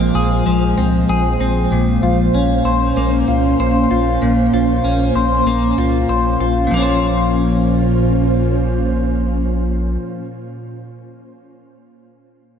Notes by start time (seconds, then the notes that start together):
Already playing: A#1 A#2 F3 G#3 A#3 C4 G#4 C5
0.15 A#1 G#4
0.46 A#1 F3
0.78 C2 C4
1.09 A#1 G#4
1.40 A#1 C4
1.71 A#1 A#2 A#3 C#4 C5
2.03 A#1 F4
2.34 A#1 C#4
2.65 A#1 C5
2.96 A#1 A#3
3.28 C2 F4
3.59 A#1 C5
3.91 A#1 F4
4.22 A#1 A#2
4.53 A#1 F4
4.84 A#1 C#4
5.15 A#1 C5
5.45 A#1 A#3
5.78 C2 F4
6.09 A#1 C5
6.40 A#1 F4
6.67 A#2
6.71 A#1 A#2 F3 A#3 C#4 F4 C5
6.77 C#4 F4
6.82 C5